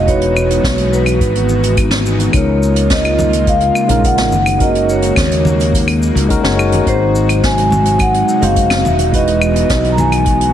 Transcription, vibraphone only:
0.07 C#5
0.93 B4
2.35 C#5
2.92 D#5
3.49 F5
4.05 F#5
4.62 D#5
4.90 C#5
6.88 C5
7.45 G#5
8.01 F#5
8.43 F5
8.87 E5
9.15 D#5
9.92 A#5
10.00 G#5

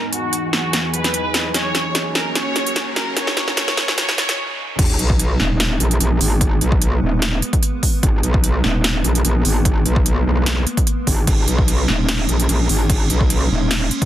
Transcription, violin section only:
0.12 F#4
0.53 F#4
0.93 B4
1.54 C#5
2.15 A#4
2.36 C#5
2.96 A#4
3.17 C#5
3.57 C#5
3.98 C#5
4.18 C#5

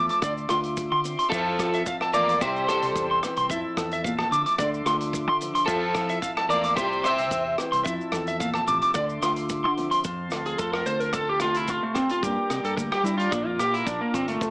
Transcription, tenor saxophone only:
1.34 F3
2.15 A#3
2.44 G3
2.72 G3
5.68 F3
6.52 A#3
6.80 G3
7.07 C4

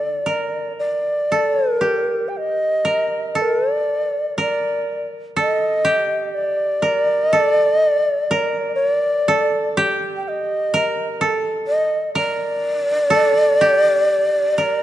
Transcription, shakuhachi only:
Already playing: D5
0.79 D5
1.77 A#4
2.28 G5
2.37 D#5
3.42 A#4
3.74 D5
4.40 D5
5.39 D#5
6.34 D5
7.23 D#5
7.41 D5
7.72 D#5
7.90 D5
8.75 C#5
8.90 D5
10.16 G5
10.23 G5
10.28 D#5
11.68 D#5
12.16 D5

